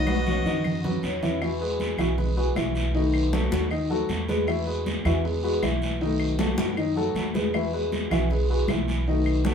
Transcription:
Already playing: B1 F#4 D#5
0.07 F#3 B3 D#4 F#4 B4, high conga, claves
0.27 B2 F#3 B3 D#4 F#4, low conga, short guiro
0.44 F#2 D#3 B3 D#4 F#4 D#5, low conga, short guiro
0.64 muted nylon-string guitar stroke, low conga, long guiro, claves
0.84 F#3 B3 D#4 F#4 B4, low conga
1.03 E2 B2 F#3 B3 D#4 F#4, short guiro
1.22 E3 E4 E5, low conga, short guiro
1.41 B2 E3 G#3 B3 E4 F#4 E5, high conga, long guiro, claves
1.60 G#3 G#4 B4, high conga
1.80 high conga, short guiro
1.98 B1 E3 G#3 B3 E4 F#4 E5, high conga, low conga, short guiro, claves
2.18 G#3 G#4 B4, muted nylon-string guitar stroke, high conga, low conga, long guiro
2.37 E3 G#3 B3 F#4 G#4 B4, high conga
2.55 B1 E3 G#3 B3 E4 F#4 E5, high conga, short guiro, claves
2.75 high conga, short guiro
2.94 B2 D#3 A3 B3 D#4 F#4 D#5, high conga, long guiro
3.14 high conga, claves
3.32 F#3 F#4 A4, high conga, short guiro
3.51 D#2 D#3 A3 B3 F#4, high conga, short guiro
3.71 D#3 D#4 D#5, muted nylon-string guitar stroke, high conga, long guiro, claves
3.90 D#3 F#3 A3 B3 F#4 A4, high conga
4.09 E2 D#3 A3 B3 F#4, high conga, short guiro
4.28 G#3 G#4 B4, high conga, short guiro
4.47 B2 E3 G#3 B3 E4 F#4 E5, high conga, long guiro, claves
4.67 G#3 G#4 B4, high conga
4.86 high conga, short guiro
5.05 E2 E3 G#3 B3 E4 F#4 E5, high conga, low conga, short guiro, claves
5.24 G#3 G#4 B4, muted nylon-string guitar stroke, high conga, long guiro
5.43 E3 G#3 B3 F#4 G#4 B4, high conga
5.62 B1 E3 G#3 B3 E4 F#4 E5, high conga, short guiro, claves
5.82 high conga, short guiro
6.01 B2 D#3 A3 B3 D#4 F#4 D#5, high conga, long guiro
6.20 high conga, claves
6.39 F#3 F#4 A4, high conga, short guiro
6.57 F#2 D#3 A3 B3 F#4, high conga, short guiro
6.77 D#3 D#4 D#5, muted nylon-string guitar stroke, high conga, long guiro, claves
6.96 D#3 F#3 A3 B3 F#4 A4, high conga
7.15 E2 D#3 A3 B3 F#4, high conga, short guiro
7.34 G#3 G#4 B4, high conga, short guiro
7.54 B2 E3 G#3 B3 E4 F#4 E5, high conga, long guiro, claves
7.73 G#3 G#4 B4, high conga
7.92 high conga, short guiro
8.11 B1 E3 G#3 B3 E4 F#4 E5, high conga, low conga, short guiro, claves
8.30 G#3 G#4 B4, muted nylon-string guitar stroke, high conga, low conga, long guiro
8.49 E3 G#3 B3 F#4 G#4 B4, high conga
8.68 B1 E3 G#3 B3 E4 F#4 E5, high conga, short guiro, claves
8.88 high conga, short guiro
9.07 B2 D#3 A3 B3 D#4 F#4 D#5, high conga, long guiro
9.26 high conga, claves
9.45 F#3 F#4 A4, high conga, short guiro

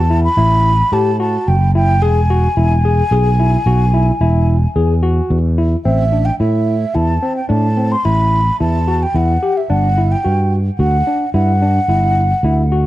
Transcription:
Already playing: E2 A5
0.10 E4
0.24 B5
0.37 A1 E4
0.92 A2 G4 A5
1.20 F#4 A5
1.48 F#1 G5
1.75 E4 G5
2.02 E1 G#4 G#5
2.30 F#4
2.57 E1 E4
2.85 G#4
3.11 B1 G#4
3.39 E4
3.66 B1 F#4
3.94 E4
4.21 E1 E4
4.76 E2 G#4
5.03 F#4
5.30 E2
5.58 E4
5.85 A1 C4 E5
6.12 D4
6.25 G5
6.39 A2 E4 E5
6.95 E2 E4 A5
7.23 C4
7.37 G5
7.49 A2 D4 A5
7.77 C4
7.92 C6
8.05 A1 E4 B5
8.60 E2 E4 A5
8.87 F#4
9.03 G5
9.14 E2 E4 F#5
9.42 G4
9.57 E5
9.70 G1 D4 F#5
9.98 E4
10.12 G5
10.24 G2 F#4
10.78 D2 F#4 F#5
11.07 D4
11.33 G2 E4 F#5
11.62 D4
11.88 G1 E4
12.43 D2 E4
12.72 F#4

